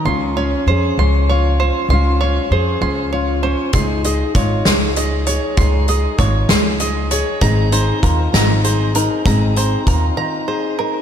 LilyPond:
<<
  \new Staff \with { instrumentName = "Five-string banjo" } { \time 6/8 \key des \major \tempo 4. = 65 c'''8 des''8 c''8 c'''8 des''8 c''8 | c'''8 des''8 c''8 c'''8 des''8 c''8 | c'''8 ees''8 des''8 c'''8 ees''8 des''8 | c'''8 ees''8 des''8 c'''8 ees''8 des''8 |
bes''8 c''8 bes'8 bes''8 c''8 bes'8 | bes''8 c''8 bes'8 bes''8 c''8 bes'8 | }
  \new Staff \with { instrumentName = "Steel-string acoustic guitar" } { \time 6/8 \key des \major << { <des' f'>8 des'8 aes'8 des'8 f'8 des'8 | <des' f'>8 des'8 aes'8 des'8 f'8 des'8 | <ees' aes'>8 aes'8 f'8 aes'8 aes'8 aes'8 | <ees' aes'>8 aes'8 f'8 aes'8 aes'8 aes'8 |
<c' ees' aes'>8 ees'8 f'8 ees'8 aes'8 ees'8 | <c' ees' aes'>8 ees'8 f'8 ees'8 aes'8 ees'8 | } \\ { des4 r8 f4 r8 | des4 r8 f4 r8 | des4 r8 aes4 r8 | des4 r8 aes4 r8 |
aes,4 r8 ees4 r8 | aes,4 r8 ees4 r8 | } >> }
  \new Staff \with { instrumentName = "Upright bass" } { \clef bass \time 6/8 \key des \major des,4 f,8 des,4. | des,4 f,8 des,4. | des,4 aes,,8 des,4. | des,4 aes,,8 des,4. |
aes,,4 ees,8 aes,,4. | aes,,4 ees,8 r4. | }
  \new DrumStaff \with { instrumentName = "Drums" } \drummode { \time 6/8 r4. r4. | r4. r4. | <hh bd>8 hh8 <hh bd>8 <hh sn>8 hh8 hh8 | <hh bd>8 hh8 <hh bd>8 <hh sn>8 hh8 hh8 |
<hh bd>8 hh8 <hh bd>8 <hh sn>8 hh8 hh8 | <hh bd>8 hh8 <hh bd>8 r4. | }
>>